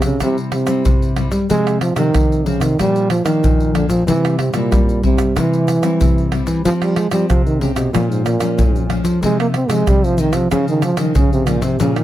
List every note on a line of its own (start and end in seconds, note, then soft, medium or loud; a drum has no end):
0.02 0.17 C3 medium
0.02 0.20 C#3 medium
0.02 pandeiro medium
0.02 tamborim medium
0.02 shaker medium
0.20 0.82 C3 medium
0.20 0.62 C3 medium
0.20 0.37 C3 medium
0.20 0.64 G3 medium
0.20 0.64 C4 medium
0.20 0.64 E4 medium
0.20 pandeiro medium
0.20 tamborim medium
0.20 shaker medium
0.20 surdo medium
0.38 pandeiro soft
0.38 shaker soft
0.52 1.14 C3 medium
0.52 pandeiro medium
0.52 tamborim medium
0.67 1.12 G3 medium
0.67 0.82 C4 medium
0.67 1.12 C4 medium
0.67 1.12 E4 medium
0.67 pandeiro medium
0.67 tamborim medium
0.67 shaker medium
0.85 1.47 G2 medium
0.85 1.27 C3 medium
0.85 pandeiro medium
0.85 shaker medium
0.85 surdo loud
1.02 pandeiro soft
1.02 shaker soft
1.16 1.37 G3 medium
1.16 1.37 C4 medium
1.16 1.37 E4 medium
1.16 pandeiro medium
1.16 tamborim medium
1.31 1.46 G3 medium
1.31 pandeiro medium
1.31 shaker medium
1.49 1.91 C3 loud
1.49 2.11 C3 medium
1.49 1.80 F3 medium
1.49 1.80 G#3 loud
1.49 1.80 G#3 medium
1.49 1.80 C4 medium
1.49 pandeiro medium
1.49 shaker medium
1.49 surdo medium
1.67 pandeiro soft
1.67 tamborim medium
1.67 shaker soft
1.81 1.96 F3 medium
1.81 pandeiro medium
1.81 tamborim medium
1.96 2.10 C3 medium
1.96 2.47 D#3 medium
1.96 2.40 F3 medium
1.96 2.40 G#3 medium
1.96 2.41 C4 medium
1.96 pandeiro medium
1.96 tamborim medium
1.96 shaker medium
2.14 2.55 C3 medium
2.14 2.75 C3 medium
2.14 pandeiro medium
2.14 tamborim medium
2.14 shaker medium
2.14 surdo loud
2.32 pandeiro soft
2.32 shaker soft
2.46 2.63 C#3 medium
2.46 2.65 F3 medium
2.46 2.65 G#3 medium
2.46 2.66 C4 medium
2.46 pandeiro medium
2.60 2.74 C3 medium
2.60 2.78 D#3 medium
2.60 pandeiro medium
2.60 tamborim medium
2.60 shaker medium
2.79 3.20 A#2 medium
2.79 3.40 A#2 medium
2.79 3.09 F3 medium
2.79 3.09 G3 loud
2.79 3.09 A#3 medium
2.79 3.09 D4 medium
2.79 pandeiro medium
2.79 tamborim medium
2.79 shaker medium
2.79 surdo medium
2.96 pandeiro soft
2.96 shaker soft
3.10 3.24 F3 medium
3.10 pandeiro medium
3.10 tamborim medium
3.24 3.76 D#3 medium
3.24 3.69 F3 medium
3.24 3.39 A#3 medium
3.24 3.69 A#3 medium
3.24 3.70 D4 medium
3.24 pandeiro medium
3.24 tamborim medium
3.24 shaker medium
3.43 4.05 F2 medium
3.43 3.84 A#2 medium
3.43 pandeiro medium
3.43 shaker medium
3.43 surdo loud
3.60 pandeiro soft
3.60 shaker soft
3.74 3.88 D3 medium
3.74 4.02 F3 medium
3.74 4.02 A#3 medium
3.74 4.02 D4 medium
3.74 pandeiro medium
3.74 tamborim medium
3.89 4.03 A#2 medium
3.89 4.05 F3 medium
3.89 pandeiro medium
3.89 shaker medium
4.07 4.48 C3 loud
4.07 4.69 C3 medium
4.07 4.37 E3 medium
4.07 4.51 G3 medium
4.07 4.51 C4 medium
4.07 4.52 E4 medium
4.07 pandeiro medium
4.07 shaker medium
4.07 surdo medium
4.25 pandeiro soft
4.25 tamborim medium
4.25 shaker soft
4.39 4.54 C3 medium
4.39 pandeiro medium
4.39 tamborim medium
4.53 5.00 A#2 medium
4.53 4.68 C3 medium
4.53 4.98 G3 medium
4.53 4.99 C4 medium
4.53 4.99 E4 medium
4.53 pandeiro medium
4.53 tamborim medium
4.53 shaker medium
4.71 5.34 G2 medium
4.71 5.12 G3 medium
4.71 pandeiro medium
4.71 tamborim medium
4.71 shaker medium
4.71 surdo loud
4.89 pandeiro soft
4.89 shaker soft
5.03 5.39 C3 medium
5.03 5.23 G3 medium
5.03 5.23 C4 medium
5.03 5.23 E4 medium
5.03 pandeiro medium
5.03 surdo medium
5.17 5.32 G3 medium
5.17 pandeiro medium
5.17 tamborim medium
5.17 shaker medium
5.36 5.77 C3 medium
5.36 5.98 C3 medium
5.36 6.33 E3 medium
5.36 5.80 G3 medium
5.36 5.80 C4 medium
5.36 5.80 E4 medium
5.36 pandeiro medium
5.36 tamborim medium
5.36 shaker medium
5.36 surdo medium
5.53 pandeiro soft
5.53 shaker soft
5.68 pandeiro medium
5.68 tamborim medium
5.68 shaker medium
5.82 6.27 G3 medium
5.82 5.97 C4 medium
5.82 6.27 C4 medium
5.82 6.28 E4 medium
5.82 pandeiro medium
5.82 tamborim medium
5.82 shaker medium
6.00 6.62 G2 medium
6.00 6.41 C3 medium
6.00 pandeiro medium
6.00 shaker medium
6.00 surdo loud
6.18 pandeiro soft
6.18 shaker soft
6.32 6.60 G3 soft
6.32 6.60 C4 soft
6.32 6.61 E4 medium
6.32 pandeiro medium
6.32 tamborim medium
6.47 6.62 E3 medium
6.47 pandeiro medium
6.47 shaker medium
6.65 6.72 F3 loud
6.65 7.06 F3 loud
6.65 7.27 F3 medium
6.65 6.96 G#3 medium
6.65 6.96 C4 medium
6.65 6.96 G4 medium
6.65 pandeiro medium
6.65 shaker medium
6.65 surdo medium
6.82 6.97 G3 medium
6.82 pandeiro soft
6.82 tamborim medium
6.82 shaker soft
6.96 7.11 G#3 medium
6.96 pandeiro medium
6.96 tamborim medium
7.11 7.26 F3 medium
7.11 7.27 G3 medium
7.11 7.56 G#3 medium
7.11 7.56 C4 medium
7.11 7.56 G4 medium
7.11 pandeiro medium
7.11 tamborim medium
7.11 shaker medium
7.29 7.71 C3 medium
7.29 7.91 C3 medium
7.29 7.44 F3 medium
7.29 pandeiro medium
7.29 tamborim medium
7.29 shaker medium
7.29 surdo loud
7.46 7.61 D#3 medium
7.46 pandeiro soft
7.46 shaker soft
7.60 7.74 C#3 medium
7.60 7.80 G#3 medium
7.60 7.81 C4 medium
7.60 7.81 G4 medium
7.60 pandeiro medium
7.75 7.90 B2 medium
7.75 7.91 C3 medium
7.75 pandeiro medium
7.75 tamborim medium
7.75 shaker medium
7.93 8.11 A#2 medium
7.93 8.34 A#2 medium
7.93 8.55 A#2 medium
7.93 8.37 F3 medium
7.93 8.37 G#3 medium
7.93 8.38 C#4 medium
7.93 pandeiro medium
7.93 tamborim medium
7.93 shaker medium
7.93 surdo medium
8.09 8.24 G#2 medium
8.09 pandeiro soft
8.09 shaker soft
8.25 8.86 A#2 medium
8.25 pandeiro medium
8.25 tamborim medium
8.25 shaker medium
8.39 8.85 F3 medium
8.39 8.85 G#3 medium
8.39 8.54 A#3 medium
8.39 8.85 C#4 medium
8.39 pandeiro medium
8.39 tamborim medium
8.39 shaker medium
8.58 9.20 F2 medium
8.58 8.99 A#2 medium
8.58 pandeiro medium
8.58 shaker medium
8.58 surdo loud
8.76 pandeiro soft
8.76 shaker soft
8.90 9.17 F3 medium
8.90 9.17 G#3 medium
8.90 9.18 C#4 medium
8.90 pandeiro medium
8.90 tamborim medium
9.04 9.19 F3 medium
9.04 pandeiro medium
9.04 shaker medium
9.22 9.63 C3 loud
9.22 9.84 C3 medium
9.22 9.53 F3 medium
9.22 9.38 G#3 loud
9.22 9.54 G#3 medium
9.22 9.54 D#4 medium
9.22 pandeiro medium
9.22 shaker medium
9.22 surdo medium
9.40 9.48 A#3 medium
9.40 pandeiro soft
9.40 tamborim medium
9.40 shaker soft
9.54 9.71 C4 medium
9.54 pandeiro medium
9.54 tamborim medium
9.68 9.83 C3 medium
9.68 10.14 F3 medium
9.68 9.90 G#3 medium
9.68 10.14 G#3 medium
9.68 10.14 D#4 medium
9.68 pandeiro medium
9.68 tamborim medium
9.68 shaker medium
9.86 10.28 C3 medium
9.86 10.48 C3 medium
9.86 10.06 G3 loud
9.86 pandeiro medium
9.86 tamborim medium
9.86 shaker medium
9.86 surdo loud
10.04 10.22 F3 medium
10.04 pandeiro soft
10.04 shaker soft
10.18 10.36 D#3 medium
10.18 10.38 F3 medium
10.18 10.38 G#3 medium
10.18 10.38 D#4 medium
10.18 pandeiro medium
10.18 shaker medium
10.33 10.48 C3 medium
10.33 10.51 F3 medium
10.33 pandeiro medium
10.33 tamborim medium
10.33 shaker medium
10.51 10.92 C#3 medium
10.51 11.13 C#3 medium
10.51 10.66 C#3 medium
10.51 10.82 F3 medium
10.51 10.82 G#3 medium
10.51 10.82 D#4 medium
10.51 pandeiro medium
10.51 tamborim medium
10.51 shaker medium
10.51 surdo medium
10.68 10.83 D#3 medium
10.68 pandeiro soft
10.68 shaker soft
10.82 10.99 F3 medium
10.82 pandeiro medium
10.82 tamborim medium
10.82 shaker medium
10.97 11.12 C#3 medium
10.97 11.19 D#3 medium
10.97 11.42 F3 medium
10.97 11.42 G#3 medium
10.97 11.42 D#4 medium
10.97 pandeiro medium
10.97 tamborim medium
10.97 shaker medium
11.15 11.77 G#2 medium
11.15 11.57 C#3 medium
11.15 11.32 C#3 medium
11.15 pandeiro medium
11.15 shaker medium
11.15 surdo loud
11.33 11.49 C3 medium
11.33 pandeiro soft
11.33 shaker soft
11.46 11.63 A#2 medium
11.46 11.74 F3 medium
11.46 11.74 G#3 medium
11.46 11.74 D#4 medium
11.46 pandeiro medium
11.46 tamborim medium
11.46 shaker medium
11.61 11.76 C3 medium
11.61 11.79 C3 medium
11.61 pandeiro medium
11.61 shaker medium
11.80 12.04 A#2 medium
11.80 12.04 A#2 loud
11.80 11.98 C#3 medium
11.80 12.04 F3 medium
11.80 12.04 G#3 medium
11.80 12.04 C#4 medium
11.80 pandeiro medium
11.80 shaker medium
11.80 surdo medium
11.96 12.04 D#3 medium
11.96 pandeiro soft
11.96 tamborim medium
11.96 shaker soft